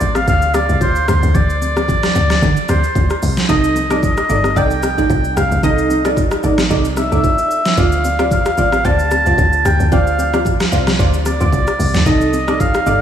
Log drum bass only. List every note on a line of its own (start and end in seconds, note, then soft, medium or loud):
0.01 0.27 A1 medium
0.28 0.68 D2 loud
0.69 0.83 C2 medium
0.81 1.07 D2 loud
1.08 1.22 D2 medium
1.23 1.34 D2 loud
1.35 2.11 D2 loud
2.15 2.41 D2 loud
2.42 2.56 D3 loud
2.69 2.83 D2 medium
2.95 3.10 D2 loud
3.23 3.37 C2 loud
3.49 4.25 C2 loud
4.30 4.56 G1 loud
4.56 4.97 C2 loud
4.98 5.09 A1 medium
5.10 5.36 C2 loud
5.37 5.51 C2 loud
5.51 5.63 C2 loud
5.63 6.40 C2 loud
6.44 6.70 A1 loud
6.70 7.11 C2 loud
7.12 7.24 C2 loud
7.77 8.54 D2 loud
8.58 8.84 A1 loud
8.85 9.25 D2 loud
9.26 9.37 C2 medium
9.38 9.64 D2 loud
9.65 9.79 D2 loud
9.80 9.92 D2 loud
9.92 10.68 D2 loud
10.72 10.98 C2 loud
10.99 11.39 D2 loud
11.41 11.52 D2 medium
11.53 11.67 C2 loud
11.79 11.94 C2 loud
11.94 12.06 D2 medium
12.06 12.83 C2 loud
12.86 13.02 G1 loud